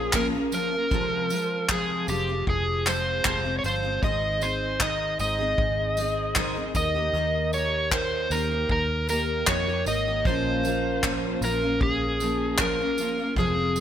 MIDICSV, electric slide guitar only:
0, 0, Header, 1, 2, 480
1, 0, Start_track
1, 0, Tempo, 778210
1, 564, Time_signature, 4, 2, 24, 8
1, 8513, End_track
2, 0, Start_track
2, 0, Title_t, "Electric slide guitar"
2, 0, Program_c, 0, 29
2, 0, Note_on_c, 0, 68, 89
2, 96, Note_on_c, 0, 70, 97
2, 102, Note_off_c, 0, 68, 0
2, 159, Note_off_c, 0, 70, 0
2, 336, Note_on_c, 0, 70, 103
2, 1025, Note_off_c, 0, 70, 0
2, 1059, Note_on_c, 0, 68, 96
2, 1290, Note_off_c, 0, 68, 0
2, 1293, Note_on_c, 0, 67, 89
2, 1512, Note_off_c, 0, 67, 0
2, 1539, Note_on_c, 0, 68, 79
2, 1755, Note_off_c, 0, 68, 0
2, 1780, Note_on_c, 0, 72, 99
2, 1995, Note_off_c, 0, 72, 0
2, 2016, Note_on_c, 0, 72, 91
2, 2209, Note_off_c, 0, 72, 0
2, 2212, Note_on_c, 0, 73, 61
2, 2249, Note_off_c, 0, 73, 0
2, 2257, Note_on_c, 0, 72, 102
2, 2490, Note_off_c, 0, 72, 0
2, 2493, Note_on_c, 0, 75, 94
2, 2730, Note_on_c, 0, 72, 89
2, 2735, Note_off_c, 0, 75, 0
2, 2972, Note_on_c, 0, 75, 103
2, 2974, Note_off_c, 0, 72, 0
2, 3203, Note_off_c, 0, 75, 0
2, 3210, Note_on_c, 0, 75, 106
2, 4142, Note_off_c, 0, 75, 0
2, 4172, Note_on_c, 0, 75, 105
2, 4648, Note_off_c, 0, 75, 0
2, 4650, Note_on_c, 0, 73, 94
2, 4870, Note_off_c, 0, 73, 0
2, 4890, Note_on_c, 0, 72, 95
2, 5129, Note_on_c, 0, 70, 93
2, 5134, Note_off_c, 0, 72, 0
2, 5368, Note_off_c, 0, 70, 0
2, 5376, Note_on_c, 0, 70, 94
2, 5593, Note_off_c, 0, 70, 0
2, 5613, Note_on_c, 0, 70, 92
2, 5853, Note_on_c, 0, 73, 100
2, 5855, Note_off_c, 0, 70, 0
2, 6072, Note_off_c, 0, 73, 0
2, 6092, Note_on_c, 0, 75, 96
2, 6311, Note_off_c, 0, 75, 0
2, 6333, Note_on_c, 0, 72, 102
2, 7057, Note_off_c, 0, 72, 0
2, 7059, Note_on_c, 0, 70, 94
2, 7293, Note_off_c, 0, 70, 0
2, 7296, Note_on_c, 0, 68, 85
2, 7776, Note_on_c, 0, 70, 87
2, 7784, Note_off_c, 0, 68, 0
2, 8226, Note_off_c, 0, 70, 0
2, 8260, Note_on_c, 0, 68, 86
2, 8513, Note_off_c, 0, 68, 0
2, 8513, End_track
0, 0, End_of_file